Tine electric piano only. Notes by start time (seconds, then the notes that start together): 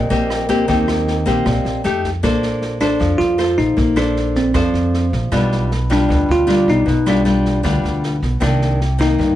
Already playing: D#5
2.81 D4
3.18 F4
3.58 D#4
3.97 D4
4.37 C4
5.92 D4
6.32 F4
6.70 D#4
7.09 D4
9.01 D#4